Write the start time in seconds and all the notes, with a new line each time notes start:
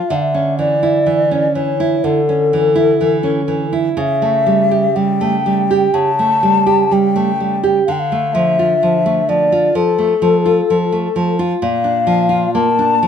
Already playing: F5
0.09 D3 E5
0.15 F5
0.22 E5
0.34 C#4
0.58 E3 D5
0.83 E4
1.06 E3
1.31 C#4
1.55 E3 C#5
1.80 E4
2.04 D3 A4
2.29 C#4
2.53 E3
2.75 E4
3.01 E3
3.23 C#4
3.48 E3
3.73 E4
3.97 C#3 E5
4.22 A3
4.46 G3
4.71 G4
4.96 G3 G5
5.21 A3
5.46 G3
5.71 G4
5.94 C#3 A5
6.19 A3
6.43 G3
6.66 G4
6.91 G3 G5
7.16 A3
7.40 G3
7.63 G4
7.86 D3 F5
7.92 G5
7.99 F5
8.12 A3
8.34 F3 E5
8.59 F4
8.83 F3
9.06 A3
9.29 F3 D5
9.52 F4
9.75 F3 A4
9.98 A3
10.22 F3
10.46 F4
10.70 F3
10.92 A3
11.16 F3
11.39 F4
11.62 A#2 F5
11.84 D4
12.07 F3
12.29 F4
12.54 A#3 A5
12.79 D4
13.03 F3